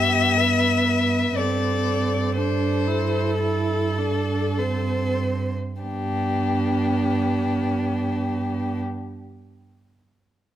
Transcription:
0.00 1.32 G2 medium
0.00 1.34 B3 soft
0.00 0.38 G4 medium
0.00 1.38 E5 medium
0.37 0.86 B4 soft
0.87 1.39 B4 soft
1.36 5.52 G2 soft
1.36 2.39 C4 soft
1.36 2.36 A4 soft
1.36 2.35 D5 medium
2.36 2.88 D4 soft
2.36 4.59 A4 soft
2.36 3.38 C5 medium
2.87 3.40 E4 soft
3.40 4.00 E4 soft
3.40 5.17 A4 medium
3.98 4.60 D4 soft
4.58 5.56 C4 soft
4.58 5.56 C5 soft
5.81 8.81 G2 soft
5.81 8.81 B3 soft
5.81 8.80 D4 soft
5.81 8.79 G4 soft

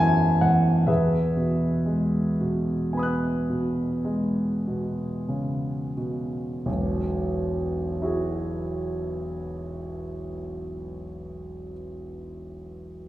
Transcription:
0.00 0.83 A1 soft
0.00 0.42 E2 soft
0.00 0.42 F#2 soft
0.00 0.90 E3 soft
0.00 0.91 C4 soft
0.00 0.87 E5 medium
0.00 0.41 F#5 medium
0.00 0.42 G#5 medium
0.00 0.91 A5 medium
0.00 0.91 B5 medium
0.00 0.90 C6 medium
0.41 0.86 E2 soft
0.41 0.87 F#5 medium
0.87 6.62 E2 soft
0.87 5.93 G#4 soft
0.87 5.92 B4 soft
0.87 5.96 E5 medium
1.37 2.18 B2 soft
1.86 2.72 G#3 soft
2.41 3.26 B2 soft
2.93 3.81 B3 soft
2.93 6.62 G#5 soft
2.97 6.64 B5 soft
2.97 6.65 D#6 soft
3.03 6.67 F#6 soft
3.50 4.41 B2 soft
4.05 5.02 G#3 soft
4.67 5.70 B2 soft
5.28 5.97 C#3 soft
5.97 6.66 B2 soft
6.66 10.36 E1 soft
6.66 10.35 B1 soft
8.02 11.71 E4 soft
8.02 11.73 F#4 soft
8.02 11.74 G#4 soft

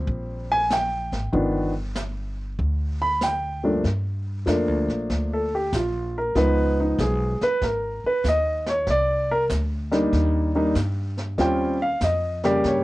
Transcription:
0.00 0.57 F3 medium
0.00 0.58 G3 medium
0.00 0.58 A#3 medium
0.00 0.58 C4 medium
0.07 1.08 A#1 loud
0.07 brush sweep soft
0.07 kick soft
0.52 0.70 G#5 loud
0.70 1.72 G5 medium
0.70 snare medium
0.70 hi-hat pedal medium
1.12 1.31 G#1 medium
1.12 snare soft
1.32 2.55 G1 medium
1.32 1.71 D#3 medium
1.32 1.71 F3 soft
1.32 1.71 B3 medium
1.32 1.72 D4 medium
1.32 brush sweep medium
1.32 kick soft
1.95 snare medium
1.95 hi-hat pedal medium
2.59 3.80 D2 medium
2.59 brush sweep soft
2.59 kick soft
3.02 3.21 B5 medium
3.21 3.71 G5 medium
3.21 snare medium
3.21 hi-hat pedal medium
3.63 3.82 G2 medium
3.63 3.82 F3 medium
3.63 3.82 A3 medium
3.63 3.83 A#3 soft
3.63 3.83 D4 medium
3.84 4.45 G2 medium
3.84 brush sweep soft
3.84 kick soft
3.84 snare soft
4.46 4.68 F2 medium
4.46 5.43 F3 medium
4.46 5.44 A3 medium
4.46 5.44 A#3 medium
4.46 5.44 D4 medium
4.46 kick soft
4.46 snare medium
4.46 hi-hat pedal soft
4.68 4.88 D2 medium
4.89 5.08 A#1 medium
4.89 snare soft
5.10 5.71 D2 medium
5.10 brush sweep soft
5.10 kick soft
5.10 snare soft
5.33 5.53 A4 medium
5.55 5.74 G4 medium
5.73 6.34 A#1 medium
5.73 6.15 F4 medium
5.73 kick soft
5.73 snare medium
5.73 hi-hat pedal medium
6.18 6.36 A#4 medium
6.35 6.96 C#2 medium
6.35 7.32 F3 medium
6.35 7.33 G#3 medium
6.35 7.33 B3 medium
6.35 6.79 D#4 medium
6.35 6.78 B4 medium
6.35 brush sweep soft
6.35 kick soft
6.35 snare soft
6.80 6.99 D#4 medium
6.99 7.38 B1 loud
6.99 7.41 G#4 medium
6.99 kick soft
6.99 snare medium
6.99 hi-hat pedal medium
7.41 7.62 B4 loud
7.41 muted upright bass stroke soft
7.41 snare soft
7.61 8.01 G#1 medium
7.61 8.04 A#4 medium
7.61 brush sweep soft
7.61 kick soft
7.61 snare soft
8.04 8.25 B4 medium
8.04 muted upright bass stroke soft
8.24 8.85 D#2 medium
8.24 kick soft
8.24 snare medium
8.24 hi-hat pedal medium
8.28 8.67 D#5 medium
8.66 8.88 C#5 medium
8.66 snare soft
8.87 9.48 C2 medium
8.87 9.30 D5 loud
8.87 brush sweep soft
8.87 kick soft
8.87 snare soft
9.31 9.43 A#4 medium
9.49 10.11 D2 medium
9.49 kick soft
9.49 snare medium
9.49 hi-hat pedal medium
9.91 10.51 G3 medium
9.91 10.51 A#3 medium
9.91 10.51 D4 medium
9.91 10.51 D#4 medium
9.91 snare soft
10.13 10.74 D#2 medium
10.13 brush sweep soft
10.13 kick soft
10.13 snare soft
10.55 10.74 G3 medium
10.55 10.74 A#3 medium
10.55 10.74 D4 medium
10.55 10.74 D#4 medium
10.75 11.36 G2 medium
10.75 kick soft
10.75 snare medium
10.75 hi-hat pedal medium
11.18 snare soft
11.38 11.99 D#2 medium
11.38 11.76 G3 medium
11.38 11.77 C4 medium
11.38 11.77 C#4 medium
11.38 11.77 F4 medium
11.38 11.81 G5 medium
11.38 brush sweep soft
11.38 kick soft
11.38 snare soft
11.82 12.01 F5 medium
12.01 12.62 F2 medium
12.01 12.44 D#5 medium
12.01 kick soft
12.01 snare medium
12.01 hi-hat pedal medium
12.44 12.84 C#3 medium
12.44 12.84 G3 medium
12.44 12.84 A#3 medium
12.44 12.84 G4 medium
12.44 12.64 D5 medium
12.44 snare soft
12.64 12.84 G2 medium
12.64 12.84 C#5 medium
12.64 brush sweep soft
12.64 kick soft
12.64 snare soft

